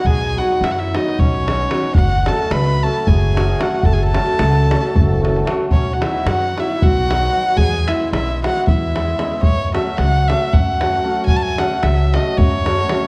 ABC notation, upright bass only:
X:1
M:7/8
L:1/8
Q:1/4=113
K:F#dor
V:1 name="Upright bass" clef=bass
B,,,2 F,,2 B,,,3 | F,,,2 C,,2 F,,,3 | F,,,2 C,,2 F,,,3 | B,,,2 F,,2 B,,,3 |
E,,2 B,,,2 E,,3 | F,,2 C,,2 F,,3 | F,,2 C,,2 F,,3 |]